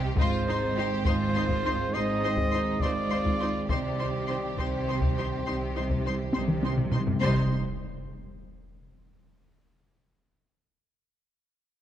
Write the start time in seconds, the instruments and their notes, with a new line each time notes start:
Already playing: violin section G4
0.16 double bass section G#1, cello section G#2, trombone section D#3 G#3, french horn section C4 C5, viola section D#4 C5, violin section F4, trumpet C5, taiko
0.21 violin section C6
0.48 viola section D#4 C5, violin section D#4 C6
0.77 viola section D#4 C5, violin section G4 C6
1.05 double bass section G#1, cello section G#2, viola section D#4 C5, violin section F4 C6, trumpet C5, taiko
1.35 viola section D#4 C5, violin section C6
1.49 taiko
1.65 viola section D#4 C5, violin section C6
1.92 double bass section G#1, cello section G#2, violin section D#4 C6, viola section D#4 C5, trumpet D#5
2.22 violin section C4 C6, viola section D#4 C5
2.37 taiko
2.52 violin section D#4 C6, viola section D#4 C5
2.81 double bass section G#1, cello section G#2, viola section D#4 C5, violin section F4 C6, trumpet D5, taiko
3.10 viola section D#4 C5, violin section C6
3.26 taiko
3.40 viola section D#4 C5, violin section C6
3.69 double bass section C2, timpani C3, cello section C3, trombone section D#3 G3, french horn section C4 C5, viola section D#4 C5, violin section G4 C6, trumpet D5, taiko
3.77 timpani C3
3.85 timpani C3
3.92 timpani C3
3.99 viola section D#4 C5, violin section C6
4.28 timpani C3, viola section D#4 C5, violin section C6
4.37 timpani C3
4.45 timpani C3
4.52 timpani C3
4.57 double bass section C2, cello section C3, timpani C3, viola section D#4 C5, trumpet C5, violin section C6, taiko
4.67 timpani C3
4.88 timpani C3, viola section D#4 C5, violin section C6
4.97 timpani C3
5.01 timpani C3, taiko
5.11 timpani C3
5.18 timpani C3, viola section D#4 C5, violin section C6
5.27 timpani C3
5.35 timpani C3
5.42 double bass section C2, timpani C3, cello section C3
5.46 timpani C3, viola section D#4 C5, violin section C6
5.57 timpani C3
5.64 timpani C3
5.72 timpani C3, viola section D#4 C5
5.77 timpani C3, violin section C6
5.87 timpani C3, taiko
5.94 timpani C3
6.01 timpani C3
6.05 timpani C3, viola section D#4 C5, violin section C6
6.16 timpani C3
6.24 timpani C3
6.31 double bass section C2, timpani C3, cello section C3, viola section D#4 C5, violin section C6, taiko high
6.39 timpani C3
6.47 timpani C3, taiko mid
6.54 timpani C3
6.61 timpani C3, viola section D#4 C5, violin section C6, taiko high
6.69 timpani C3
6.77 timpani C3, taiko low-mid
6.85 timpani C3
6.92 timpani C3, viola section D#4 C5, violin section C6, taiko low-mid
6.99 timpani C3
7.07 timpani C3, taiko low
7.14 timpani C3
7.21 double bass section C2, cello section C3, timpani C3, trombone section D#3 G3, french horn section C4 C5, viola section D#4, violin section C5 C6, trumpet C5, impact